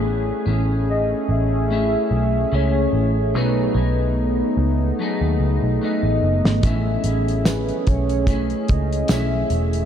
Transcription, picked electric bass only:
X:1
M:4/4
L:1/16
Q:"Swing 16ths" 1/4=73
K:Alyd
V:1 name="Picked electric bass" clef=bass
A,,,2 A,,,4 A,,,4 B,,,2 C,,2 A,,,2 | B,,,2 B,,,4 C,,2 z D,, C,, B,,, z A,,, F,,, G,,, | A,,,2 A,,,4 B,,,4 C,,2 B,,,2 E,,,2 |]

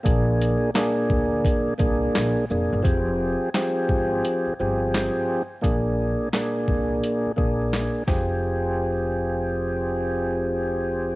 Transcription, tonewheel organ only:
X:1
M:4/4
L:1/8
Q:"Swing 16ths" 1/4=86
K:Fdor
V:1 name="Tonewheel organ"
[B,,B,DA]2 [B,,B,DA]3 [B,,B,DA]2 [B,,B,DA] | [F,CGA]2 [F,CGA]3 [F,CGA]2 z | [B,,B,DA]2 [B,,B,DA]3 [B,,B,DA]2 [F,CGA]- | [F,CGA]8 |]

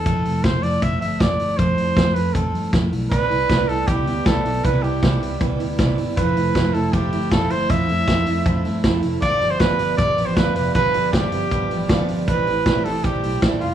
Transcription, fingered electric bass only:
X:1
M:4/4
L:1/8
Q:1/4=157
K:Flyd
V:1 name="Fingered electric bass" clef=bass
F,,, F,,, F,,, F,,, F,,, G,,, F,,, G,,, | F,, F,, F,, F,, F,, G,, F,, B,,, | C,, C,, C,, C,, C,, D,, C,, B,,, | C,, C,, C,, C,, C,, D,, C,, G,,, |
F,,, F,,, F,,, F,,, F,,, G,,, F,,, G,,, | F,, F,, F,, F,, F,, G,, F,, F,,, | G,,, G,,, G,,, G,,, G,,, A,,, G,,, F,,, | G,,, G,,, G,,, G,,, G,,, A,,, G,,, G,,, |
A,,, A,,, A,,, A,,, A,,, B,,, A,,, F,,, |]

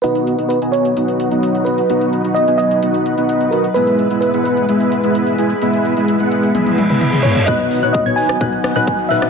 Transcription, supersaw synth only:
X:1
M:4/4
L:1/16
Q:1/4=129
K:B
V:1 name="Supersaw synth"
[B,DFdf]3 [B,DFdf]2 [B,DFdg]3 [B,DFdf]3 [B,DFdf]3 [B,DFdf] z | [B,DFdf]3 [B,DFdf]2 [B,DFdg]3 [B,DFdf]3 [B,DFdf]3 [B,DFdf] z | [G,B,EBe]3 [G,B,EBe]2 [G,B,EBf]3 [G,B,EBe]3 [G,B,EBe]3 [G,B,EBg] z | [G,B,EBe]3 [G,B,EBe]2 [G,B,EBf]3 [G,B,EBe]3 [G,B,EBe]3 [G,B,EBg] z |
[B,DFf]3 [B,DFdf]2 [B,DFdg]3 [B,DFdf]3 [B,DFdf]3 [B,DFdf] z |]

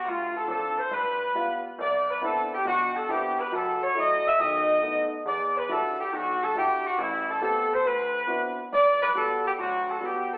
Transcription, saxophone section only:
X:1
M:4/4
L:1/8
Q:"Swing" 1/4=138
K:G
V:1 name="Saxophone section"
=F A A c B3 z | d B A G F A G B | A ^c _e =e ^d3 z | d B A G F A G F |
E A A c B3 z | d B A G F A G A |]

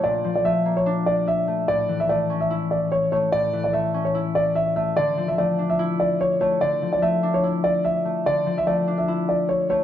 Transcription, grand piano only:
X:1
M:4/4
L:1/16
Q:1/4=146
K:Dm
V:1 name="Grand piano"
d3 d e3 ^c z2 d2 e4 | d3 e d3 e z2 d2 ^c2 c2 | d3 d e3 ^c z2 d2 e2 e2 | d3 e d3 e z2 d2 ^c2 c2 |
d3 d e3 ^c z2 d2 e4 | d3 e d3 e z2 d2 ^c2 c2 |]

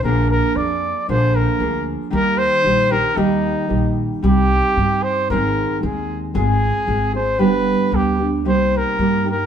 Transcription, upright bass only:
X:1
M:2/4
L:1/8
Q:1/4=114
K:Eb
V:1 name="Upright bass" clef=bass
B,,,2 F,,2 | B,,,2 D,,2 | E,,2 B,,,2 | E,,2 B,,,2 |
[K:Cm] C,,2 G,,2 | A,,,2 E,,2 | A,,,2 A,,,2 | G,,,2 D,,2 |
C,,2 G,,2 |]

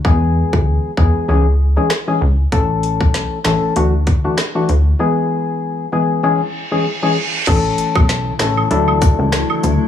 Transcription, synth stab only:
X:1
M:4/4
L:1/16
Q:"Swing 16ths" 1/4=97
K:A
V:1 name="Synth stab"
[E,G,B,G]6 [E,G,B,G]2 [E,G,CG] z2 [E,G,CG] z [E,G,CG] z2 | [E,A,CA]6 [E,A,CA]2 [E,A,DF] z2 [E,A,DF] z [E,A,DF] z2 | [E,G,B,G]6 [E,G,B,G]2 [E,G,CG] z2 [E,G,CG] z [E,G,CG] z2 | [E,A,CA]6 [E,A,CA]2 [F,DEA]6- [F,DEA] z |]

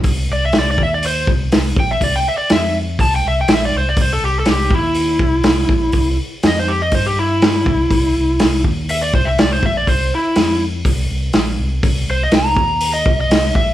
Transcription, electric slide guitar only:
X:1
M:4/4
L:1/16
Q:1/4=122
K:Cmix
V:1 name="Electric slide guitar"
z2 d e d d e d c2 z4 g e | d g e d e2 z2 a g e g e d c d | c A G A G2 E8- E2- | E2 z2 _e c G e c G =E6- |
E6 z2 e d c e d c e d | c2 E4 z8 z2 | z2 c _e g b4 e2 e3 =e2 |]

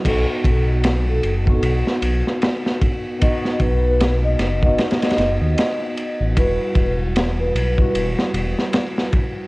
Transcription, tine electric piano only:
X:1
M:4/4
L:1/16
Q:"Swing 16ths" 1/4=76
K:Bphr
V:1 name="Tine electric piano"
[B,^DF]6- [B,DF] [B,DF]8- [B,DF] | [B,^DF]6- [B,DF] [B,DF]8- [B,DF] | [G,EF]6- [G,EF] [G,EF]8- [G,EF] |]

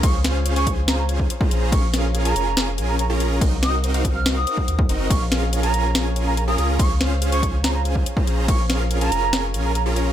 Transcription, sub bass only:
X:1
M:4/4
L:1/8
Q:1/4=142
K:Bbm
V:1 name="Sub bass" clef=bass
D,,6 z B,,,- | B,,,3 F,,,2 B,,,3 | C,,4- C,, z E,, G,,, | B,,,6- B,,, D,,- |
D,,6 z B,,,- | B,,,3 F,,,2 B,,,3 |]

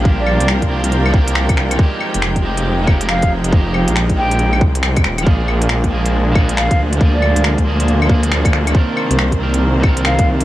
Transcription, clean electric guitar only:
X:1
M:4/4
L:1/8
Q:"Swing 16ths" 1/4=138
K:Fdor
V:1 name="Clean electric guitar"
[F,B,DG]3 [F,B,DG]2 [F,B,DG]3 | [F,A,EG]3 [F,A,EG]2 [F,A,EG]3 | [F,A,EG]3 [F,A,EG]2 z3 | [F,B,DA]3 [F,B,DA]2 [F,B,DA]3 |
[F,B,DA]3 [F,B,DA]2 [F,B,DA]3 | [E,CDB]3 [E,CDB]2 [E,CDB]3 |]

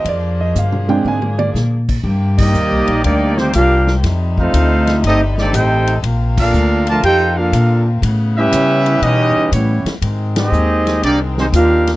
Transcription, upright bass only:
X:1
M:4/4
L:1/8
Q:"Swing" 1/4=120
K:Bbmix
V:1 name="Upright bass" clef=bass
F,,2 G,,2 A,,2 B,,2 | [K:Cm] G,,2 (3E,, C,, B,,, D,,2 C,,2 | F,,2 D,,2 G,,,2 =A,,,2 | B,,,2 D,,2 F,,2 B,,2 |
=A,,2 ^C,2 =B,, z A,, z | A,,2 E,,2 C,,2 E,,2 |]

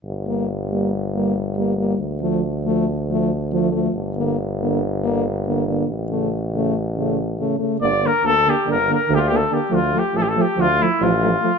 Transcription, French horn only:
X:1
M:9/8
L:1/8
Q:3/8=93
K:Gm
V:1 name="French horn"
z B, z B, z B, z B, B, | z A, z A, z A, z A, A, | z B, z B, z B, z B, B, | z A, z A, z A, z A, A, |
B, B, B, B, B, B, B, B, B, | A, A, A, A, A, A, A, A, A, |]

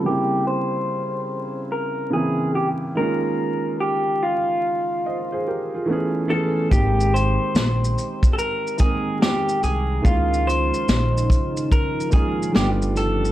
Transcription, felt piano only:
X:1
M:4/4
L:1/16
Q:"Swing 16ths" 1/4=72
K:Ab
V:1 name="Felt piano"
z16 | z8 [ce] [Ac] [GB] [FA]2 z3 | z16 | z16 |]
V:2 name="Felt piano"
[D,G,B,C=E]4- [D,G,B,CE] z4 z [D,=E,B,CE]2 z2 [_E,A,B,DF]2- | [E,A,B,DF]4 z8 [=E,=A,=B,^C^G]2 [E,A,B,CG]2 | [E,A,B,CG]4- [E,A,B,CG] z4 z [E,A,B,CB]4 z2 | [E,A,B,D_F=F]4- [E,A,B,D_F=F] z4 z [E,A,B,DF]2 [G,=A,=B,=DF]4 |]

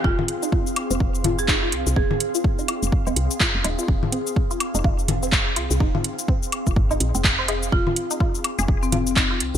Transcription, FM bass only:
X:1
M:4/4
L:1/16
Q:"Swing 16ths" 1/4=125
K:Fm
V:1 name="FM bass" clef=bass
F,,, z6 F,,, F,,,6 C,, C,, | F,,, z6 F,,, z E,,, C,, z2 F,,, E,,, z | F,,, z6 F,,, F,,,6 C,, C,, | F,,, z6 F,,, A,,,2 B,,, F,,,4- F,,, |
F,,, z6 F,,, F,,,6 C,, C,, |]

